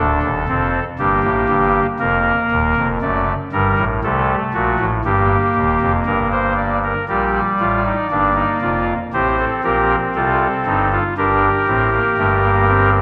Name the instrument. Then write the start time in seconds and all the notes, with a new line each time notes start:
pipe organ
Already playing: D1 D2 D4 A4
0.23 D#1 D#2
0.48 F1 F2 C4
0.99 G1 G2 A#3 G4
1.24 A1 A2
1.49 G1 G2
1.99 F1 F2 A#3 A#4
2.51 D#1 D#2
2.77 F1 F2
3.02 F#1 F#2 A3 D5
3.52 G1 G2 G3 A#4
3.78 A1 A2
4.03 C2 C3 A3 A4
4.54 A#1 A#2 F#4
4.79 A1 A2
5.05 G1 G2 A#3 G4
5.55 D#1 D#2
5.81 F1 F2
6.06 G1 G2 A#4
6.32 C5
6.57 D5
6.83 A#4
7.09 A#1 A#2 G3 G4 D5
7.60 A1 A2 F4
7.85 D#4
8.11 G1 G2 A#3 D4
8.36 D#4
8.61 F1 F2 F4
9.13 A1 A2 C4 G4 C5
9.39 A4
9.64 A#1 A#2 G4 A#4
10.15 C2 C3 F4 A4
10.66 G1 G2 D#4
10.92 F4
11.17 G1 G2 D4 G4 A#4
11.68 A1 A2 C4
11.93 A#3
12.18 G1 G2 A3
12.43 A#3
12.68 C4